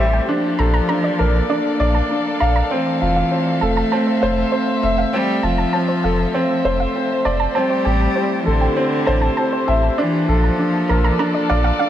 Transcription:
Already playing: G3 A3 C4 E4 G4 A4 C5
0.00 A1 E5
0.13 G5
0.27 F3 A#3 D4
0.38 F5
0.45 A4 D5
0.59 A#1 A4 A#5
0.74 A#5
0.89 D4 A#5
1.04 D5
1.19 A#1 A#4 A5
1.50 D4 D5
1.80 A#1 D5
1.95 A5
2.11 D4
2.40 A#1 F5 A#5
2.56 A#5
2.70 E3 A3 C4 C5
3.01 F1 F4
3.16 F5
3.32 C4
3.38 E5
3.61 F1 A3 A4 A5
3.77 A5
3.92 C4 A5
4.07 C5
4.22 F1 C5 F5
4.52 C4 C5
4.83 F1 E5
4.98 F5
5.13 G3 C4
5.30 C5
5.43 F1 F3 F4 A5
5.58 A5
5.73 C4 A5
5.88 C5
6.04 F1 A4 F5
6.34 C4 C5
6.65 F1 C5
6.80 F5
6.95 C4
7.25 F1 D5 A5
7.40 A5
7.55 G3 A3 C4 A5
7.70 C5
7.85 A1 G4 G5
7.91 E4
8.13 C4 G4 C5
8.46 A1 D3 A4
8.61 G5
8.77 C4
9.07 A1 C5 A5
9.22 A5
9.37 C4 A5
9.53 C5
9.68 A1 E5 G5
9.98 E3 A#3 D4 D5
10.03 F4
10.22 A4
10.28 A#1 F3 A4
10.44 A5
10.59 D4
10.89 A#1 A#4 A#5
11.04 D5 A#5
11.19 D4 A#5
11.34 D5
11.49 A#1 D5 F5
11.64 F5
11.79 D4 F5

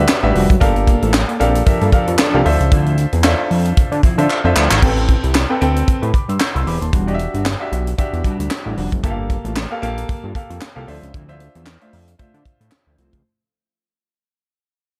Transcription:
Already playing: D4 F#4 G4 B4 E5
0.08 snare, clap
0.23 A1 G3 D4 F#4 G4 B4 E5
0.34 F1 G3 D4 F#4, open hi-hat
0.49 F#1, muted clean electric guitar stroke, kick, closed hi-hat
0.60 G1 A#3 D4 F4 G4 A4 A#4 F5, kick, closed hi-hat
0.76 muted clean electric guitar stroke, closed hi-hat
0.87 A#3 A4 D5, muted clean electric guitar stroke, kick, closed hi-hat
1.02 A1 A#3 E4 F4 A4 C5 E5, closed hi-hat
1.13 muted clean electric guitar stroke, snare, clap
1.28 A#3 A4 D5, muted clean electric guitar stroke, closed hi-hat
1.40 A#1 C4 D4 G4 A4 A#4 C5 F5, closed hi-hat
1.55 muted clean electric guitar stroke, closed hi-hat
1.66 G2 F3 D4 G4 A4 A#4 E5, muted clean electric guitar stroke, kick, closed hi-hat
1.81 G2 A#3 F4 A4, closed hi-hat
1.92 F3 D4 G4 A4 A#4 F5, muted clean electric guitar stroke, kick, closed hi-hat
2.07 F2, muted clean electric guitar stroke, closed hi-hat
2.18 F3 D4 A4, muted clean electric guitar stroke, snare, clap
2.33 C2 A#3 D4 F4 G4 A4 A#4 F5
2.45 D2 F3 C4 D4 E4 F4 A4 C5 E5, open hi-hat
2.60 C#2, muted clean electric guitar stroke, closed hi-hat
2.71 D2 F3 C4 E4, kick, closed hi-hat
2.86 closed hi-hat
2.98 muted clean electric guitar stroke, closed hi-hat
3.13 E2 F3 C4 E4, closed hi-hat
3.24 D4 F4 A4 C5 E5, muted clean electric guitar stroke, snare, clap
3.39 muted clean electric guitar stroke
3.51 F2, open hi-hat
3.65 muted clean electric guitar stroke, closed hi-hat
3.77 kick, closed hi-hat
3.92 D3, muted clean electric guitar stroke, closed hi-hat
4.03 F3 C4 E4, kick, closed hi-hat
4.18 D3 D4 F4 A4 C5 E5, muted clean electric guitar stroke, closed hi-hat
4.30 muted clean electric guitar stroke, clap
4.44 F2 F3 C4 D4 E4 F4 A4 C5 E5
4.55 D2 F3 C4 E4, clap
4.70 G#1, muted clean electric guitar stroke, clap
4.82 C4 G4 A4 B4 G5, kick, crash
4.97 muted clean electric guitar stroke, closed hi-hat
5.08 muted clean electric guitar stroke, kick, closed hi-hat
5.23 C2 C4 G4 B4, closed hi-hat
5.35 muted clean electric guitar stroke, snare, clap
5.49 C4 A4 B4 G5, muted clean electric guitar stroke
5.61 D2 C4 A4 B4 G5, closed hi-hat
5.76 muted clean electric guitar stroke, closed hi-hat
5.87 A2, muted clean electric guitar stroke, kick, closed hi-hat
6.01 A2 C4 G4 B4, closed hi-hat
6.13 B5 D6, muted clean electric guitar stroke, kick, closed hi-hat
6.28 G2 C6 E6, muted clean electric guitar stroke, closed hi-hat
6.40 E6 G6, muted clean electric guitar stroke, snare, clap
6.54 C2 C4 G4 B4 C6 E6, closed hi-hat
6.66 E1 C4 G4 B4 B5 D6, open hi-hat
6.81 D#1 A5 C6, muted clean electric guitar stroke, closed hi-hat
6.92 E1 G3 D4 F#4, kick, closed hi-hat
7.07 D4 F#4 G4 D#5, closed hi-hat
7.14 E5
7.19 muted clean electric guitar stroke, closed hi-hat
7.33 G1 G3 D4 F#4, closed hi-hat
7.45 muted clean electric guitar stroke, snare, clap
7.60 D4 F#4 G4 E5, muted clean electric guitar stroke
7.72 B1, closed hi-hat
7.86 muted clean electric guitar stroke, closed hi-hat
7.98 E2 D4 F#4 G4 E5, muted clean electric guitar stroke, kick, closed hi-hat
8.13 E2, muted clean electric guitar stroke, closed hi-hat
8.24 G3 D4 F#4, kick, closed hi-hat
8.39 D2, muted clean electric guitar stroke, closed hi-hat
8.51 snare, clap
8.65 A1 G3 D4 F#4
8.77 F1 G3 D4 F#4, open hi-hat
8.92 F#1, muted clean electric guitar stroke, kick, closed hi-hat
9.03 G1 A#3 F4 G4 A4 E5, kick, closed hi-hat
9.10 F5
9.18 muted clean electric guitar stroke
9.30 kick, closed hi-hat
9.44 A1 A#3 F4 A4, closed hi-hat
9.56 muted clean electric guitar stroke, snare, clap
9.70 A#3 G4 A4 F5, muted clean electric guitar stroke
9.82 A#1 A#3 G4 A4 F5, closed hi-hat
9.97 muted clean electric guitar stroke, closed hi-hat
10.09 G2, muted clean electric guitar stroke, kick, closed hi-hat
10.23 G2 A#3 F4 A4
10.35 A#3 G4 A4 F5, muted clean electric guitar stroke, kick, closed hi-hat
10.50 F2, closed hi-hat
10.61 muted clean electric guitar stroke, snare, clap
10.75 C2 A#3 F4 G4 A4 F5
10.87 D2 F3 C4 D4 E4 F4 C5 E5, open hi-hat
11.02 C#2, muted clean electric guitar stroke, closed hi-hat
11.14 D2 F3 C4 E4, kick, closed hi-hat
11.28 D4 F4 C5 E5, closed hi-hat
11.40 muted clean electric guitar stroke, closed hi-hat
11.55 E2 F3 C4 E4, closed hi-hat
11.66 snare, clap
11.81 A3 D4 F4 C5 E5, muted clean electric guitar stroke, closed hi-hat
11.93 F2, open hi-hat
12.08 muted clean electric guitar stroke, closed hi-hat
12.19 D3 A3 D4 F4 C5 E5, muted clean electric guitar stroke, kick, closed hi-hat
12.34 D3, muted clean electric guitar stroke, closed hi-hat
12.45 kick, closed hi-hat
12.61 A2, closed hi-hat
12.71 snare, clap
12.86 D2 F3 C4 E4
12.98 C2 F3 A3 C4 E4 F4 C5, closed hi-hat
13.13 C#2, muted clean electric guitar stroke, kick, closed hi-hat

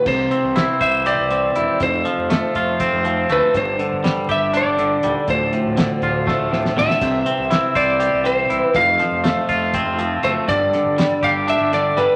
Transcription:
Already playing: D2 A2
0.06 C2 C3 E3 C4 G4 C5, kick, crash
0.31 C4, closed hi-hat
0.43 C2
0.56 E4, snare, closed hi-hat
0.81 C2 C5 E5, kick, closed hi-hat
1.06 G4 D5, closed hi-hat
1.18 C2
1.30 C4, closed hi-hat
1.55 E1 E4, closed hi-hat
1.80 F1 F2 F3 A4 C5, kick, closed hi-hat
2.05 F3, closed hi-hat
2.18 F1
2.30 A3, snare, closed hi-hat
2.55 F1 F4, kick, closed hi-hat
2.80 C4, kick, closed hi-hat
2.92 F1
3.05 F3, closed hi-hat
3.29 D2 A3 B4, closed hi-hat
3.54 G1 G2 G3 D4 C5 D5, kick, closed hi-hat
3.79 D3, closed hi-hat
3.92 G1
4.04 G3, snare, closed hi-hat
4.29 G1 G4 E5, kick, closed hi-hat
4.54 D4 D5, closed hi-hat
4.65 G1
4.79 D3, closed hi-hat
5.03 D#1 G3, closed hi-hat
5.27 D1 D2 F3 D4 C5, kick, closed hi-hat
5.53 A2, closed hi-hat
5.65 D1
5.77 D3, snare, closed hi-hat
6.02 D1 F4, kick, closed hi-hat
6.27 A3, kick, snare
6.39 D1
6.52 A2, snare
6.65 snare
6.76 D1 D3 E5, snare
6.90 snare
7.01 C2 C3 E3 C4 G4 C5, kick, closed hi-hat, crash
7.26 C4, closed hi-hat
7.38 C2
7.50 E4, snare, closed hi-hat
7.75 C2 C5 D5, kick, closed hi-hat
8.00 G4, closed hi-hat
8.13 C2
8.24 C4 C5, closed hi-hat
8.50 C2 E4, closed hi-hat
8.64 B4
8.73 F1 F2 F3 C4 A4 F5, kick, closed hi-hat
8.99 F3, snare, closed hi-hat
9.11 F1
9.24 A3, snare, closed hi-hat
9.49 F1 F4, kick, closed hi-hat
9.74 C4, kick, closed hi-hat
9.85 F1
9.99 F3, closed hi-hat
10.23 F#1 A3 C5, snare, closed hi-hat
10.47 G1 G2 G3 D4 D5, kick, closed hi-hat
10.73 D3, snare, closed hi-hat
10.84 G1
10.98 G3, snare, closed hi-hat
11.23 G1 G4 F5, kick, closed hi-hat
11.47 D4 E5, closed hi-hat
11.60 G1
11.73 D3 D5, snare, closed hi-hat
11.97 G1 G3 B4, closed hi-hat

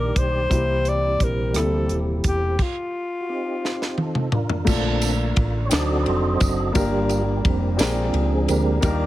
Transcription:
Already playing: A#1 D#3 G3 A#3 D4 D#4 G4 A#4 D5
0.16 B1 C5, kick, closed hi-hat
0.49 C2 C3 E3 G3 A#3 C4 E4 G4, kick, closed hi-hat
0.85 D5, closed hi-hat
1.20 A#1 A#4, kick, closed hi-hat
1.53 D2 G3 A#3 C4 E4 A4, cross-stick, closed hi-hat
1.57 A4
1.89 D#1, closed hi-hat
2.24 E1 G4, kick, closed hi-hat
2.59 kick, crash
2.63 F4
3.21 F#4
3.29 C4 D#4 G4
3.65 snare
3.82 snare
3.97 A4, high tom
4.15 mid tom
4.32 D4 F4 A#4, mid tom
4.49 floor tom
4.65 A#1 D3 A3 A#3 D4 F4 A4, kick, crash, tambourine
4.69 C4 D4 A4
5.02 ride, tambourine
5.36 A1, kick, ride
5.65 C#5
5.69 D2 D3 F#3 C4 D4 D#4 F#4 A4 D5 D#5, snare, ride, tambourine
5.99 B4
6.06 F1 C5, ride
6.40 F#1 A4, kick, ride, tambourine
6.73 G1 G2 G3 A#3 D4 F4 G4 A#4, kick, ride, tambourine
6.77 D4 F4
7.09 ride, tambourine
7.45 F1 C4 D4 G4, kick, ride
7.77 A#1 A#2 F3 G#3 C4 D4 G4 G#4 A#4, ride, tambourine
7.81 snare
8.14 C#2 G#4, ride
8.48 D2 A#3 G4 A#4, ride, tambourine
8.81 D#2 G3 A#3 D4 D#4 F4 G4 A#4 D5, kick, ride, tambourine

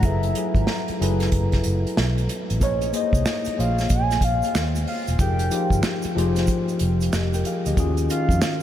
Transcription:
0.02 F#1 F#3 E4 G#4 A4 E5, kick, closed hi-hat
0.07 B4
0.23 closed hi-hat
0.35 F#3 E4 G#4 A4 B4, closed hi-hat
0.55 G#1, kick, closed hi-hat
0.67 snare
0.88 muted fingered electric bass stroke, closed hi-hat
1.00 F#1 F#3 E4 G#4 A4 B4, closed hi-hat
1.20 snare, closed hi-hat
1.32 F#1, kick, closed hi-hat
1.52 kick, snare, closed hi-hat
1.64 F#1, closed hi-hat
1.87 closed hi-hat
1.97 B1, snare
2.18 closed hi-hat
2.29 closed hi-hat
2.50 A1, closed hi-hat
2.60 A#1 A#3 G#4 C5 C#5 D#5, kick, closed hi-hat, shaker
2.81 closed hi-hat, shaker
2.92 A#3 G#4 C5 C#5 D#5, closed hi-hat, shaker
3.13 C2, kick, closed hi-hat, shaker
3.26 finger snap, snare, shaker
3.45 muted fingered electric bass stroke, closed hi-hat, shaker
3.57 A#1 A#3 G#4 C5 C#5 D#5 F5, closed hi-hat
3.78 snare, closed hi-hat, shaker
3.89 A#1 G#5, kick, closed hi-hat, shaker
4.10 snare, closed hi-hat, shaker
4.21 A#1 F5, kick, closed hi-hat
4.43 closed hi-hat, shaker
4.55 D#2, finger snap, snare, shaker
4.75 closed hi-hat, shaker
4.87 F5, open hi-hat
5.07 E1, closed hi-hat, shaker
5.18 F1 F3 D#4 G4 G#4 A#4 G5, kick, closed hi-hat, shaker
5.39 closed hi-hat, shaker
5.51 F3 D#4 G4 G#4 C5, closed hi-hat, shaker
5.70 G1, kick, closed hi-hat, shaker
5.83 finger snap, snare, shaker
6.02 muted fingered electric bass stroke, closed hi-hat, shaker
6.15 F1 F3 D#4 G4 G#4 C5, closed hi-hat
6.36 snare, closed hi-hat, shaker
6.47 kick, closed hi-hat, shaker
6.68 closed hi-hat, shaker
6.79 F1, closed hi-hat
7.01 closed hi-hat, shaker
7.13 F1 G4 D#5, finger snap, snare, shaker
7.34 A#4 G5, closed hi-hat, shaker
7.45 G#4 F5, closed hi-hat
7.66 D2 G4 D#5, closed hi-hat, shaker
7.76 D#2 D#3 C#4 F4 F#4 G#4, kick, closed hi-hat, shaker
7.97 closed hi-hat, shaker
8.08 D#3 C#4 F4 F#4 A#4 F5, closed hi-hat, shaker
8.29 F2, kick, closed hi-hat, shaker
8.42 finger snap, snare, shaker

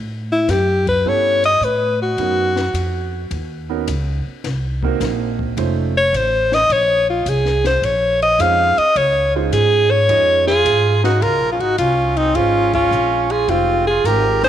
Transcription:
Already playing: A2
0.32 E4
0.48 F#2 G4, snare, hi-hat pedal, ride
0.87 B4, kick, ride
1.05 G2 B3 C#4 E4 G4 A4 C#5
1.44 D#5, ride
1.61 A2 B4, hi-hat pedal
2.02 F#4
2.17 F#2 B3 C#4 D#4 F#4 A#4, ride
2.57 snare
2.73 F2, hi-hat pedal, ride
3.31 D#2, ride
3.69 B3 C#4 D#4 F#4 A#4
3.87 C#2, hi-hat pedal, ride
4.26 muted upright bass stroke
4.44 C2, snare, ride
4.83 A#3 C4 D#4 F#4 A#4, kick
5.00 A#1, snare, hi-hat pedal, ride
5.39 kick
5.57 F1 A3 C#4 D#4 F4 C5, ride
5.97 C#5
6.13 A1 C5, hi-hat pedal, ride
6.52 D#5, snare
6.69 A#1 C#5, ride
7.10 F4
7.26 C2 G#4, hi-hat pedal, ride
7.46 snare
7.64 C5, snare, ride
7.82 A#1 C#5, ride
8.22 D#5, ride
8.39 F2 G#3 C#4 D#4 F4 C5 F5, hi-hat pedal, ride
8.78 D#5, muted upright bass stroke, ride
8.96 C#2 C#5, ride
9.36 G#3 C#4 D#4 F4 C5
9.52 G#2 G#4, hi-hat pedal, ride
9.91 C#5
10.09 F2 G#3 C#4 D#4 F4 D#5, ride
10.47 F4 G#4, snare
10.65 G#2, hi-hat pedal, ride
11.03 D#4 F#4, snare
11.21 C#2 F4 A#4, ride
11.41 A#1
11.52 C#4 F4
11.59 G#1 D#4 F#4, ride
11.78 C2 C#4 F4, hi-hat pedal, ride
12.17 C4 D#4, ride
12.34 G#1 G#3 C#4 D#4 F4 C5, ride
12.74 C#4 F4, kick, ride
12.91 A#1, hi-hat pedal
13.30 F4 G#4, ride
13.48 F1 G#3 C4 D#4 F4 G4 C5, ride
13.87 F4 G#4
14.04 G#1 G#3 D#4 F4 G4 A#4 C5, hi-hat pedal, ride
14.43 G#4 C5, snare, ride

